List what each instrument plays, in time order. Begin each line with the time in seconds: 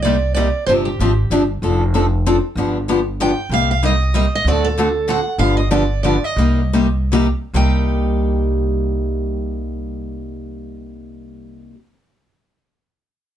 Already playing: upright bass C2
0.02 steel-string acoustic guitar C3 G3 A#3 D#4 G4 D5
0.34 steel-string acoustic guitar C3 G3 A#3 D#4 G4 D5
0.66 upright bass G1, steel-string acoustic guitar C3 F3 C4 D4 G4 C5
0.85 steel-string acoustic guitar G4
0.99 upright bass G#1, steel-string acoustic guitar C3 F3 C4 D4 G4
1.30 upright bass G1, steel-string acoustic guitar C3 F3 C4 D4 G4
1.62 upright bass F1, steel-string acoustic guitar F3 C4 D4 A4
1.94 steel-string acoustic guitar F3 C4 D4 A4
2.26 steel-string acoustic guitar F3 C4 D4 A4
2.55 upright bass G1, steel-string acoustic guitar D3 F3 B3 D4 G4
2.88 steel-string acoustic guitar D3 F3 B3 D4 G4
3.20 steel-string acoustic guitar D3 F3 B3 D4 G4 G5
3.49 upright bass C2, steel-string acoustic guitar C3 G3 A#3 D#4 G4
3.54 steel-string acoustic guitar F5
3.71 steel-string acoustic guitar F5
3.83 steel-string acoustic guitar C3 G3 A#3 D#4 G4 D#5
4.14 steel-string acoustic guitar C3 G3 A#3 D#4 G4 D#5
4.35 steel-string acoustic guitar D#5
4.45 upright bass D2, steel-string acoustic guitar D3 A3 C4 F#4 A4 D5
4.64 steel-string acoustic guitar A4
4.78 steel-string acoustic guitar D3 A3 C4 F#4 A4
5.08 steel-string acoustic guitar D3 A3 C4 F#4 A4 F#5
5.38 upright bass G1, steel-string acoustic guitar D3 F3 B3 D4 G4 F5
5.57 steel-string acoustic guitar D#5
5.71 steel-string acoustic guitar D3 F3 B3 D4 G4 D5
6.03 steel-string acoustic guitar D3 F3 B3 D4 G4 D5
6.24 steel-string acoustic guitar D#5
6.36 upright bass C2, steel-string acoustic guitar C3 G3 A#3 D#4 G4
6.73 steel-string acoustic guitar C3 G3 A#3 D#4 G4
7.12 steel-string acoustic guitar C3 G3 A#3 D#4 G4
7.54 upright bass C2, steel-string acoustic guitar C3 G3 A#3 D#4 G4 G5